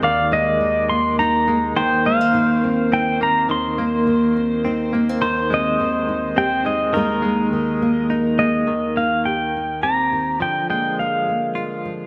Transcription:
<<
  \new Staff \with { instrumentName = "Pedal steel guitar" } { \time 3/4 \key ees \major \tempo 4 = 104 f''8 ees''4 c'''8 bes''4 | g''8 f''4. g''8 bes''8 | c'''2 r4 | r8 ees''4. g''8 ees''8~ |
ees''2 r8 ees''8~ | ees''8 f''8 g''4 bes''4 | g''8 g''8 f''4. r8 | }
  \new Staff \with { instrumentName = "Pedal steel guitar" } { \time 3/4 \key ees \major d''2~ d''8 r8 | c''2.~ | c''2. | c''2. |
bes'2~ bes'8 r8 | r2. | r2. | }
  \new Staff \with { instrumentName = "Nylon-string guitar" } { \time 3/4 \key ees \major << { r8 aes4 bes8 ees'8 bes8~ | bes8 aes16 bes8. c'8 ees'8 c'8 | r8 bes4 c'8 ees'8 bes16 c'16 | r8 c'4 ees'8 g'8 ees'8 |
<ees aes bes ees'>8 aes4 bes8 ees'8 bes8~ | bes8 ees'8 g'8 ees'8 c'4 | r8 bes8 aes'8 bes8 aes4 | } \\ { <ees, ees>4 ees2 | ees,4 ees2 | ees,4 ees2 | ees,4 ees2 |
ees,4 ees2 | ees,2~ ees,8 ees8 | d2~ d8 f8 | } >> }
  \new Staff \with { instrumentName = "Clean electric guitar" } { \clef bass \time 3/4 \key ees \major ees8 aes4. ees'8 aes8 | ees8 bes4. c'8 bes8 | ees8 bes4. c'8 bes8 | ees8 aes4. c'8 aes8 |
ees8 aes4. ees'8 aes8 | ees8 bes4. g'4 | f8 aes4. f'4 | }
>>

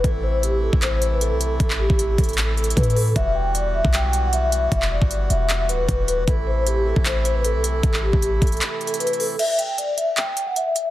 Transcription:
<<
  \new Staff \with { instrumentName = "Vibraphone" } { \time 4/4 \key a \dorian \tempo 4 = 154 a'8 c''8 g'8 a'8 c''8. b'16 a'4 | a'8 g'4 a'4 a'8 b'8 a'8 | e''8 g''8 d''8 e''8 g''8. fis''16 e''4 | e''8 d''4 e''4 b'4 b'8 |
a'8 c''8 g'8 a'8 c''8. b'16 a'4 | a'8 g'4 a'4 a'8 b'8 a'8 | e''8 g''8 d''8 e''8 g''8. fis''16 e''4 | }
  \new Staff \with { instrumentName = "Accordion" } { \time 4/4 \key a \dorian << { <a e'>1~ | <a e'>1 | <g b fis'>1~ | <g b fis'>1 |
<e a e'>1~ | <e a e'>1 | r1 | } \\ { <c e>1~ | <c e>1~ | <c e>1~ | <c e>1 |
c1~ | c1 | r1 | } >> }
  \new Staff \with { instrumentName = "808-style bass" } { \clef bass \time 4/4 \key a \dorian a,,4.~ a,,16 a,,4. b,,8. | a,,8. a,,8. a,,4. a,4 | e,,4.~ e,,16 b,,2~ b,,16 | e,,8. g,,8. e,,4 d,,16 e,,16 e,,8 d,,16 e,,16 |
a,,4.~ a,,16 a,,4. b,,8. | a,,8. a,,8. a,,8 r2 | r1 | }
  \new DrumStaff \with { instrumentName = "Drums" } \drummode { \time 4/4 <hh bd>4 hh8. bd16 <hc hh>8 hh8 hh8 hh8 | <hh bd>16 hc8 bd16 hh8 <hh bd>32 hh32 hh32 hh32 \tuplet 3/2 { <hc hh>16 r16 r16 hh16 hh16 hh16 <hh bd>16 hh16 hh16 hho16 r16 r16 } | <hh bd>4 hh8. bd16 <hc hh>8 hh8 hh8 hh8 | <hh bd>16 hc8 bd16 hh8 hh8 <hc hh>8 hh8 <hh bd>8 hh8 |
<hh bd>4 hh8. bd16 <hc hh>8 hh8 hh8 hh8 | <hh bd>16 hc8 bd16 hh8 <hh bd>32 hh32 hh32 hh32 \tuplet 3/2 { <hc hh>16 r16 r16 hh16 hh16 hh16 hh16 hh16 hh16 hho16 r16 r16 } | <cymc hh>8 hh8 hh8 hh8 <hc hh>8 hh8 hh8 hh8 | }
>>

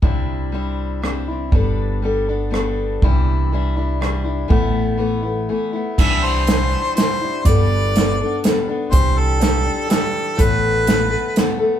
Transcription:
<<
  \new Staff \with { instrumentName = "Harmonica" } { \time 3/4 \key c \major \tempo 4 = 122 r2. | r2. | r2. | r2. |
e''8 c''4. c''4 | d''2 r4 | c''8 a'4. a'4 | b'2 r4 | }
  \new Staff \with { instrumentName = "Steel-string acoustic guitar" } { \time 3/4 \key c \major <c g c' d' e'>4 <g c' d' e'>4 <g c' d' e'>8 <c' d' e'>8 | <g b d' a'>4 <g b d' a'>8 <b d' a'>8 <g b d' a'>4 | <c e g d' e'>4 <e g d' e'>8 <g d' e'>8 <e g d' e'>8 <g d' e'>8 | <a, e a b e'>4 <e a b e'>8 <a b e'>8 <e a b e'>8 <a b e'>8 |
<c e g d' e'>4 <e g d' e'>4 <e g d' e'>8 <g d' e'>8 | <g b d' a'>4 <g b d' a'>8 <b d' a'>8 <g b d' a'>8 <b d' a'>8 | <c e g d' g'>4 <e g d' g'>8 <g d' g'>8 <e g d' g'>4 | <a, e a b a'>4 <e a b a'>8 <a b a'>8 <e a b a'>8 <a b a'>8 | }
  \new Staff \with { instrumentName = "Upright bass" } { \clef bass \time 3/4 \key c \major c,2. | g,,2. | c,2. | a,,2 r4 |
c,2 r4 | g,,2 r4 | c,2 r4 | a,,2 r4 | }
  \new DrumStaff \with { instrumentName = "Drums" } \drummode { \time 3/4 bd4 r4 ss4 | bd4 r4 ss4 | bd4 r4 ss4 | bd4 r4 r4 |
<cymc bd>4 <hh sn>4 <hh sn>4 | <hh bd>4 <hh sn>4 <hh sn>4 | <hh bd>4 <hh sn>4 <hh sn>4 | <hh bd>4 <hh sn>4 <hh sn>4 | }
>>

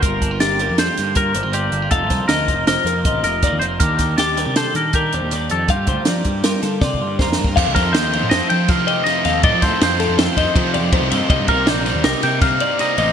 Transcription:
<<
  \new Staff \with { instrumentName = "Clean electric guitar" } { \time 5/4 \key f \mixolydian \tempo 4 = 160 bes'4 g'8 bes'8 a'4 bes'8 c''8 d''4 | f''8 c''8 ees''4 c''8 bes'8 ees''4 d''8 c''8 | bes'4 g'8 bes'8 a'4 bes'8 c''8 d''4 | f''8 c''8 d''4 bes'8 a'8 d''4 c''8 bes'8 |
f''8 c''8 ees''4 c''4 r8 ees''4 f''8 | ees''8 c''4 a'8 c''8 ees''8 c''8 d''8 c''8 ees''8 | ees''8 bes'8 d''4 bes'4 r8 d''4 ees''8 | }
  \new Staff \with { instrumentName = "Clean electric guitar" } { \time 5/4 \key f \mixolydian bes'4 d''4 c''4 bes'4 g'4 | a'4 bes'4 bes'4. bes'4 c''8 | bes'4 d''4 c''8 bes'8 g'4. a'8 | g'1 r4 |
r8 bes'8 c''4 ees''8 g''8 f''4 ees''4 | d''8 c''8 c''2. r4 | r8 bes'8 c''4 ees''8 g''8 f''4 ees''4 | }
  \new Staff \with { instrumentName = "Clean electric guitar" } { \time 5/4 \key f \mixolydian << { <bes f'>8 d'16 f'16 bes4 d'16 f'8. f'8 d'16 f'16 <bes f'>8 d'16 f'16 | <bes ees' f'>8 ees'8 bes4 ees'4 f'8 ees'8 <bes ees' f'>8 ees'8 | <d' g'>8 g'8 d'4 g'4 d'8 d'8 d'8 g'8 | <bes f'>8 f'8 bes4 f'4 f'8 f'8 <bes f' bes'>8 d'16 f'16 |
<f ees' g' a'>8 a'8 ees'4 a'8 ees'4 g'8 ees'8 a'8 | ees'8 a'8 ees'4 a'8 ees'4 g'8 ees'8 a'8 | bes8 f'16 g'16 bes4 g'8 bes4 ees'8 bes8 g'8 | } \\ { g,4. g4 d4. g,4 | f,4. f4 c4. f,4 | ees4. g4 bes,4. ees4 | g,4. g4 d4. g,4 |
f,4. f4. c4 f,4 | f,4. f4. c4 f,4 | c4. g4. g,4 c4 | } >> }
  \new Staff \with { instrumentName = "Overdriven electric guitar" } { \time 5/4 \key f \mixolydian r1 r4 | r1 r4 | r1 r4 | r1 r4 |
<f, c ees a c' f'>8 <ees a c' f'>8 <ees a c' f'>8 <ees a c' f'>4 <ees a c' f'>8 <f, c ees a c' f'>4 <f, c ees a c' f'>8 <ees a c' f'>8 | <f, c ees a c' f'>8 <ees a c' f'>8 <ees a c' f'>8 <ees a c' f'>4 <ees a c' f'>8 <f, c ees a c' f'>4 <f, c ees a c' f'>8 <ees a c' f'>8 | <c g c' ees'>8 <g c' ees'>8 <c g c' ees'>8 <g c' ees'>4 <g c' ees'>8 <c g c' ees'>4 <c g c' ees'>8 <g c' ees'>8 | }
  \new Staff \with { instrumentName = "Picked electric bass" } { \clef bass \time 5/4 \key f \mixolydian g,,4 g,,8. f,8 r16 g,4 g,,16 g,,8. g,,8 | f,,8 c,16 r16 d,8 f,,8 f,,16 r16 f,8 a,,8 f,,8. ees,16 f,,8 | ees,4 ees,8. c8 r16 ees4 ees,16 ees,8. f,8 | g,8 d,16 r16 f8 g,8 g,16 r16 g8 c8 g,8. f,16 g,8 |
f,16 c,16 f,8 ees,8. a,16 f,16 r16 f8 f8 r4 ees,8 | a,16 f16 a,16 r16 f,8. f,16 f,16 r16 f,16 r16 f8 f,8. c,16 g,16 r16 | c,16 g,16 c,8 bes,,8. ees,16 c,16 r16 c8 c8 r4 a,,8 | }
  \new DrumStaff \with { instrumentName = "Drums" } \drummode { \time 5/4 <hh bd>8 <hh bd>8 <hh sn>8 hh8 <hh sn>8 <hh sn>8 <hh bd>8 hh8 hh8 hh8 | <hh bd>8 <hh bd sn>8 <hh sn>8 <hh bd>8 <hh sn>8 hh8 <hh bd>8 <hh sn>8 <hh bd>8 hh8 | <hh bd>8 <hh bd sn>8 <hh sn>8 <hh sn>8 <hh sn>8 hh8 <hh bd>8 hh8 <hh sn>8 hh8 | <hh bd>8 <hh bd>8 <hh sn>8 <hh bd>8 <hh sn>8 <hh sn>8 \tuplet 3/2 { <bd sn>8 bd8 r8 <bd sn>8 sn8 bd8 } |
<cymc bd>8 <bd cymr sn>8 <cymr sn>8 cymr8 <cymr sn>8 cymr8 <bd cymr sn>8 cymr8 <cymr sn>8 <cymr sn>8 | <bd cymr>8 <bd cymr sn>8 <cymr sn>8 <cymr sn>8 <cymr sn>8 <bd cymr>8 <bd cymr>8 cymr8 <bd cymr>8 <cymr sn>8 | <bd cymr>8 <bd cymr>8 <cymr sn>8 <cymr sn>8 <cymr sn>8 <cymr sn>8 <bd cymr sn>8 cymr8 <cymr sn>8 cymr8 | }
>>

